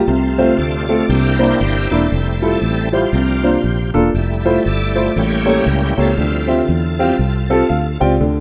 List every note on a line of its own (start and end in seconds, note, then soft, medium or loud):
0.07 0.51 C2 loud
0.07 0.86 C3 medium
0.07 0.85 A3 medium
0.07 0.86 C4 soft
0.07 0.57 F4 medium
0.38 0.51 A3 medium
0.38 0.51 C4 medium
0.38 0.51 F4 medium
0.38 0.51 C5 medium
0.58 1.02 D2 medium
0.58 1.06 F4 medium
0.58 1.06 A4 medium
0.58 1.10 D5 medium
0.88 1.02 A3 medium
0.88 1.02 C4 medium
0.88 1.02 F4 medium
0.88 1.02 A4 medium
1.09 1.53 C2 loud
1.09 1.87 C3 medium
1.09 1.87 A#3 medium
1.09 1.88 D4 soft
1.09 1.40 E4 medium
1.09 1.40 G4 medium
1.09 1.38 C5 medium
1.39 1.52 A#3 medium
1.39 1.52 D4 medium
1.39 1.52 E4 medium
1.39 1.91 E4 medium
1.39 2.07 G4 medium
1.39 1.92 C5 loud
1.39 1.52 C5 medium
1.61 1.87 G1 medium
1.90 2.08 E1 medium
1.90 2.03 A#3 medium
1.90 2.89 C4 medium
1.90 2.04 D4 medium
1.90 2.04 E4 medium
1.90 2.11 E4 medium
1.90 2.60 A4 medium
1.90 2.04 D5 medium
2.11 2.55 F1 medium
2.11 2.89 G3 medium
2.11 2.89 A3 soft
2.11 2.89 E4 medium
2.42 2.54 G3 medium
2.42 2.54 E4 medium
2.42 2.54 F4 medium
2.42 2.55 A4 medium
2.61 3.05 A1 medium
2.61 2.93 A4 medium
2.92 3.05 G3 medium
2.92 3.05 E4 medium
2.92 3.05 F4 medium
2.92 3.91 F4 medium
2.92 3.91 G4 medium
2.92 3.90 C5 medium
2.92 3.05 C5 medium
3.12 3.56 C2 loud
3.12 3.91 C3 medium
3.12 3.49 F3 soft
3.12 3.50 A#3 soft
3.12 3.50 D4 medium
3.43 3.56 A#3 medium
3.43 3.56 D4 medium
3.43 3.56 F4 medium
3.43 3.56 C5 medium
3.64 3.90 A#1 medium
3.94 4.11 E1 medium
3.94 4.06 A#3 medium
3.94 4.06 D4 medium
3.94 4.06 F4 medium
3.94 4.07 A4 medium
4.14 4.57 F1 medium
4.14 5.12 G3 medium
4.14 5.12 A3 soft
4.14 5.12 E4 medium
4.45 4.58 A3 medium
4.45 4.58 E4 medium
4.45 4.57 F4 medium
4.45 4.58 C5 medium
4.66 5.08 G1 medium
4.66 5.13 A4 medium
4.66 5.18 D5 medium
4.95 5.08 A3 medium
4.95 5.08 E4 medium
4.95 5.08 F4 medium
4.95 5.08 C5 medium
5.16 5.59 A1 medium
5.16 5.94 A2 medium
5.16 5.94 G3 soft
5.16 5.94 A#3 soft
5.16 5.94 C#4 medium
5.16 6.14 E4 medium
5.16 5.68 G4 medium
5.16 5.69 C#5 medium
5.46 5.58 A#3 medium
5.46 5.59 G4 medium
5.46 5.59 A4 medium
5.46 5.59 C#5 medium
5.66 5.93 C#2 medium
5.66 6.00 G4 medium
5.97 6.14 C#2 medium
5.97 6.10 A#3 medium
5.97 6.18 C4 medium
5.97 7.98 F4 medium
5.97 6.10 G4 medium
5.97 6.10 A4 medium
5.97 7.98 A4 medium
5.97 6.10 C#5 medium
6.17 6.60 D2 medium
6.17 6.95 D3 medium
6.17 6.55 F3 soft
6.17 6.55 G3 soft
6.17 6.55 C4 soft
6.17 6.56 E4 medium
6.48 6.60 C4 medium
6.48 6.60 F4 medium
6.48 6.61 G4 medium
6.48 6.60 E5 medium
6.69 7.11 E2 medium
6.99 7.17 F3 soft
6.99 7.17 G3 soft
6.99 7.11 C4 medium
6.99 7.17 C4 soft
6.99 7.18 E4 medium
6.99 7.12 F4 medium
6.99 7.12 G4 medium
6.99 7.12 F5 medium
7.19 7.62 C2 medium
7.50 7.62 C4 medium
7.50 7.62 F4 medium
7.50 7.62 G4 medium
7.50 7.62 A4 medium
7.50 7.68 A5 medium
7.69 7.96 D2 medium
7.69 7.98 F5 medium
8.00 8.18 C#2 medium
8.00 8.13 C4 medium
8.00 8.13 F4 medium
8.00 8.13 G4 medium
8.00 8.19 D5 medium
8.00 8.13 G5 medium
8.20 8.40 D2 loud
8.20 8.40 D3 medium